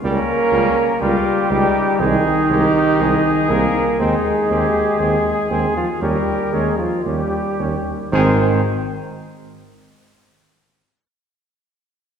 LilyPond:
<<
  \new Staff \with { instrumentName = "Flugelhorn" } { \time 4/4 \key aes \major \tempo 4 = 59 bes'4 g'4 ees'4. bes'8 | aes'4. aes'16 f'16 g'8 aes'16 f'16 g'4 | c''8 r2. r8 | }
  \new Staff \with { instrumentName = "Trumpet" } { \time 4/4 \key aes \major des'4 f'8 ees'8 aes'8 g'8 aes'4 | ees'8 g'8 aes'4 bes'8 r8 g'8 r8 | aes'8 r2. r8 | }
  \new Staff \with { instrumentName = "Trombone" } { \clef bass \time 4/4 \key aes \major g8 g8 g8 g8 aes8 aes8 aes8 aes8 | c'8 c'8 c'8 c'8 des'8 des'8 des'8 des'8 | ees8 r2. r8 | }
  \new Staff \with { instrumentName = "French horn" } { \clef bass \time 4/4 \key aes \major bes4 g4 ees4. bes8 | aes4. aes16 f16 g8 aes16 f16 g4 | c'8 r2. r8 | }
  \new Staff \with { instrumentName = "Tuba" } { \clef bass \time 4/4 \key aes \major des,8 des,8 des,8 des,8 c,8 c,8 c,8 c,8 | ees,8 ees,8 ees,8 ees,8 ees,8 ees,8 ees,8 ees,8 | aes,,8 r2. r8 | }
>>